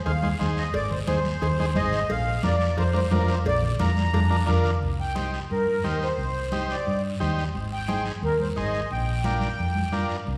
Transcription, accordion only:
0.06 0.38 F5 loud
0.58 0.74 D#5 medium
0.75 0.90 D5 loud
0.91 0.99 C5 medium
1.08 1.78 C5 medium
1.76 2.11 D#5 medium
2.11 2.42 F5 loud
2.45 2.76 D5 medium
2.79 2.95 C5 medium
2.96 3.12 C5 medium
3.14 3.29 A#4 medium
3.31 3.38 C5 medium
3.47 3.63 D5 loud
3.65 3.72 D5 medium
3.82 4.45 A#5 loud
5.00 5.31 G5 medium
5.52 5.99 A#4 medium
6.04 6.67 C5 medium
6.71 7.02 D5 medium
7.73 8.04 G5 loud
8.24 8.40 A#4 medium
8.41 8.49 C5 medium
8.58 8.93 D#5 medium
8.92 10.07 G5 medium

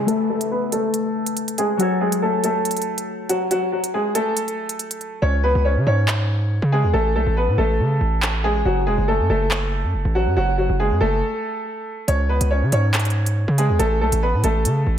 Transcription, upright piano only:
0.08 0.26 A3 medium
0.08 0.25 A4 medium
0.30 0.48 A3 medium
0.30 0.47 A4 medium
0.51 0.69 B3 medium
0.51 0.69 B4 medium
0.72 1.54 A3 medium
0.72 1.54 A4 medium
1.58 1.76 G#3 medium
1.58 1.76 G#4 medium
1.80 1.98 F#3 medium
1.80 1.97 F#4 medium
2.01 2.19 G#3 medium
2.01 2.18 G#4 medium
2.22 2.40 A3 medium
2.22 2.40 A4 medium
2.44 3.26 A3 medium
2.44 3.26 A4 medium
3.29 3.47 F#3 medium
3.29 3.47 F#4 medium
3.51 3.69 F#3 medium
3.51 3.68 F#4 medium
3.72 3.90 F#3 medium
3.72 3.90 F#4 medium
3.94 4.12 G#3 medium
3.94 4.12 G#4 medium
4.15 5.19 A3 medium
4.15 5.18 A4 medium
5.22 5.40 C#4 medium
5.22 5.40 C#5 medium
5.43 5.62 B3 medium
5.43 5.61 B4 medium
5.65 5.83 C#4 medium
5.65 5.83 C#5 medium
5.87 6.69 C#4 medium
5.87 6.69 C#5 medium
6.72 6.90 G#3 medium
6.72 6.90 G#4 medium
6.93 7.12 A3 medium
6.93 7.11 A4 medium
7.16 7.34 A3 medium
7.16 7.33 A4 medium
7.37 7.55 B3 medium
7.37 7.54 B4 medium
7.58 8.40 A3 medium
7.58 8.40 A4 medium
8.44 8.62 G#3 medium
8.44 8.62 G#4 medium
8.66 8.83 F#3 medium
8.66 8.83 F#4 medium
8.87 9.05 G#3 medium
8.87 9.04 G#4 medium
9.08 9.26 A3 medium
9.08 9.26 A4 medium
9.30 10.12 A3 medium
9.30 10.11 A4 medium
10.15 10.33 F#3 medium
10.15 10.33 F#4 medium
10.37 10.55 F#3 medium
10.37 10.54 F#4 loud
10.58 10.76 F#3 medium
10.58 10.76 F#4 medium
10.80 10.98 G#3 medium
10.80 10.97 G#4 medium
11.01 12.04 A3 medium
11.01 12.04 A4 medium
12.08 12.26 C#4 medium
12.08 12.26 C#5 medium
12.29 12.47 B3 medium
12.29 12.47 B4 medium
12.51 12.69 C#4 medium
12.51 12.68 C#5 medium
12.73 13.55 C#4 medium
12.73 13.54 C#5 medium
13.58 13.76 G#3 medium
13.58 13.76 G#4 medium
13.79 13.97 A3 medium
13.79 13.97 A4 medium
14.01 14.19 A3 medium
14.01 14.19 A4 medium
14.23 14.41 B3 medium
14.23 14.40 B4 medium
14.44 14.99 A3 medium
14.44 14.99 A4 medium

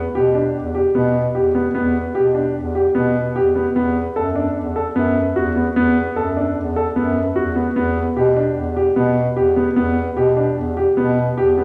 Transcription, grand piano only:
0.15 0.25 G4 medium
0.35 0.56 D4 medium
0.75 0.85 G4 medium
0.95 1.16 B3 medium
1.35 1.45 G4 medium
1.55 1.65 B3 medium
1.75 1.95 B3 medium
2.15 2.25 G4 medium
2.35 2.56 D4 medium
2.75 2.85 G4 medium
2.95 3.16 B3 medium
3.36 3.46 G4 medium
3.55 3.66 B3 medium
3.76 3.96 B3 medium
4.16 4.26 A4 medium
4.36 4.56 D4 medium
4.76 4.86 A4 medium
4.96 5.16 B3 medium
5.36 5.46 F#4 medium
5.56 5.66 B3 medium
5.76 5.97 B3 medium
6.16 6.27 A4 medium
6.37 6.57 D4 medium
6.76 6.87 A4 medium
6.96 7.17 B3 medium
7.36 7.46 F#4 medium
7.56 7.66 B3 medium
7.76 7.97 B3 medium
8.17 8.27 G4 medium
8.37 8.57 D4 medium
8.77 8.87 G4 medium
8.96 9.17 B3 medium
9.37 9.47 G4 medium
9.56 9.67 B3 medium
9.76 9.97 B3 medium
10.17 10.27 G4 medium
10.37 10.58 D4 medium
10.77 10.87 G4 medium
10.97 11.18 B3 medium
11.37 11.48 G4 medium
11.58 11.64 B3 medium

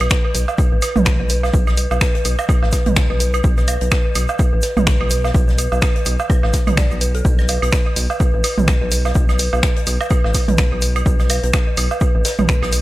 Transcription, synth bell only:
0.01 0.05 B4 medium
0.25 0.29 B4 medium
0.35 0.40 B4 medium
0.49 0.51 B4 medium
0.59 0.64 B4 medium
0.72 0.76 B4 medium
0.82 0.85 B4 medium
0.96 1.00 B4 medium
1.06 1.12 B4 medium
1.20 1.22 B4 medium
1.30 1.35 B4 medium
1.43 1.47 B4 medium
1.54 1.57 B4 medium
1.67 1.71 B4 medium
1.78 1.83 B4 medium
1.91 1.94 B4 medium
2.01 2.07 B4 medium
2.15 2.19 B4 medium
2.25 2.28 B4 medium
2.39 2.43 B4 medium
2.49 2.54 B4 medium
2.62 2.65 B4 medium
2.73 2.78 B4 medium
2.86 2.90 B4 medium
2.96 3.00 B4 medium
3.10 3.14 B4 medium
3.20 3.26 B4 medium
3.34 3.36 B4 medium
3.44 3.49 B4 medium
3.58 3.62 B4 medium
3.68 3.71 B4 medium
3.82 3.86 B4 medium
3.92 3.97 B4 medium
4.05 4.08 B4 medium
4.15 4.21 B4 medium
4.29 4.33 B4 medium
4.39 4.42 B4 medium
4.53 4.57 B4 medium
4.63 4.68 B4 medium
4.77 4.79 B4 medium
4.87 4.92 B4 medium
5.00 5.05 B4 medium
5.11 5.14 B4 medium
5.24 5.28 B4 medium
5.34 5.40 B4 medium
5.48 5.50 B4 medium
5.58 5.64 B4 medium
5.72 5.76 B4 medium
5.96 6.00 B4 medium
6.06 6.11 B4 medium
6.19 6.22 B4 medium
6.30 6.35 B4 medium
6.43 6.47 B4 medium
6.67 6.70 B4 medium
6.77 6.83 D5 loud
7.01 7.04 B4 medium
7.15 7.19 A4 medium
7.25 7.30 B4 medium
7.39 7.41 B4 medium
7.49 7.54 B4 medium
7.62 7.66 B4 medium
7.86 7.90 B4 medium
7.96 8.02 B4 medium
8.10 8.12 B4 medium
8.20 8.26 B4 medium
8.34 8.38 B4 medium
8.44 8.47 B4 medium
8.58 8.62 B4 medium
8.68 8.73 B4 medium
8.81 8.84 B4 medium
8.92 8.97 B4 medium
9.05 9.09 B4 medium
9.15 9.19 B4 medium
9.29 9.33 B4 medium
9.39 9.45 B4 medium
9.53 9.55 B4 medium
9.63 9.69 B4 medium
9.77 9.81 B4 medium
9.87 9.90 B4 medium
10.01 10.05 B4 medium
10.11 10.16 B4 medium
10.24 10.27 B4 medium
10.34 10.40 B4 medium
10.48 10.52 B4 medium
10.58 10.62 B4 medium
10.72 10.76 B4 medium
10.82 10.88 B4 medium
10.96 10.98 B4 medium
11.06 11.11 B4 medium
11.20 11.24 B4 medium
11.30 11.33 B4 medium
11.44 11.48 B4 medium
11.54 11.59 B4 medium
11.67 11.70 B4 medium
11.78 11.83 B4 medium
11.91 11.95 B4 medium
12.01 12.04 B4 medium
12.15 12.19 B4 medium
12.25 12.30 B4 medium
12.39 12.41 B4 medium
12.49 12.54 B4 medium
12.63 12.66 B4 medium
12.73 12.76 B4 medium

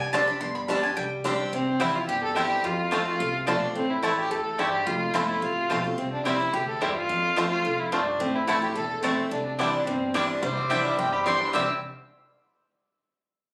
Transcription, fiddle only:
1.54 1.83 C4 loud
1.81 1.97 E4 loud
1.96 2.08 F4 loud
2.09 2.22 G4 loud
2.24 2.36 A4 loud
2.37 2.66 G4 loud
2.65 3.07 F4 loud
3.07 3.45 F4 loud
3.48 3.74 D4 loud
3.76 3.92 C4 loud
3.90 4.03 E4 loud
4.03 4.17 E4 medium
4.18 4.33 G4 loud
4.32 4.60 A4 loud
4.59 4.88 G4 loud
4.86 5.16 F4 loud
5.14 5.28 E4 loud
5.29 5.41 E4 medium
5.43 5.82 F4 loud
5.98 6.12 C4 medium
6.13 6.25 D4 medium
6.26 6.55 E4 medium
6.54 6.68 G4 loud
6.68 6.83 A4 medium
6.82 6.95 G4 medium
6.96 7.48 F4 loud
7.52 7.81 F4 loud
7.80 7.92 E4 medium
7.93 8.22 D4 medium
8.21 8.37 C4 loud
8.35 8.47 E4 medium
8.48 8.62 E4 medium
8.63 8.75 G4 medium
8.75 9.01 A4 loud
9.03 9.29 C4 medium
9.32 9.45 D4 medium
9.46 9.58 D4 medium
9.59 9.85 D4 medium
9.87 10.27 C4 medium
10.43 10.72 C5 medium
10.70 10.97 E5 medium
10.98 11.14 G5 loud
11.13 11.25 B5 medium
11.26 11.46 C6 loud
11.54 11.68 E6 medium

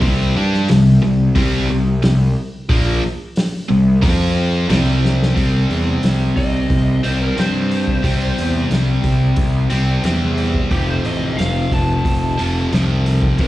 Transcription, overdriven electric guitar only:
0.01 0.34 C3 medium
0.01 0.34 G3 loud
0.01 0.35 C4 loud
0.36 0.68 G3 medium
0.36 0.68 D4 loud
0.36 0.68 G4 medium
0.69 0.96 C3 medium
0.69 0.96 G3 medium
1.02 1.29 C3 medium
1.02 1.29 G3 medium
1.35 1.68 C3 loud
1.35 1.68 G3 medium
1.35 1.68 C4 loud
1.69 1.96 C3 medium
1.69 1.96 G3 medium
2.03 2.29 C3 medium
2.03 2.29 G3 medium
2.69 3.02 A#2 loud
2.69 3.02 F3 loud
2.69 3.02 A#3 loud
3.69 3.96 C3 medium
3.69 3.96 G3 medium
4.02 4.68 F3 loud
4.02 4.68 C4 loud
4.02 4.69 F4 loud
4.69 5.33 C3 medium
4.69 5.34 G3 medium
4.69 5.35 C4 medium
5.34 7.00 C3 medium
5.34 7.01 G3 medium
5.34 7.03 C4 medium
7.03 7.35 C3 medium
7.03 7.35 G3 medium
7.03 7.38 C4 medium
7.36 8.01 C3 medium
7.36 8.02 G3 medium
7.36 8.04 C4 medium
8.02 9.68 C3 medium
8.02 9.69 G3 medium
8.02 9.69 C4 medium
9.70 10.02 C3 medium
9.70 10.02 G3 medium
9.70 10.05 C4 medium
10.03 10.69 C3 medium
10.03 10.70 G3 medium
10.03 13.48 C4 medium
10.69 12.36 F2 medium
10.69 12.37 C3 medium
10.69 12.37 F3 medium
12.38 12.70 F2 medium
12.38 12.71 C3 medium
12.38 12.70 F3 medium
12.71 13.37 F2 medium
12.71 13.38 C3 medium
12.71 13.38 F3 medium
13.38 13.48 F2 medium
13.38 13.48 C3 medium
13.38 13.48 F3 medium

